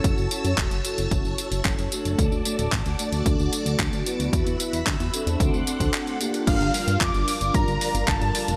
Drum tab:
CC |----------------|----------------|----------------|x---------------|
HH |x-xxxxxxx-xxxxxx|x-xxxxxxx-xxxxxx|xxxxxxxxx-xxxxxx|xxoxxxoxxxoxxxox|
TB |xxxxxxxxxxxxxxxx|xxxxxxxxxxxxxxxx|xxxxxxxxxxxxxxxx|xxxxxxxxxxxxxxxx|
CP |----x-------x---|----x-------x---|----x-------x---|----x-------x---|
BD |o---o---o---o---|o---o---o---o---|o---o---o--o----|o---o---o---o---|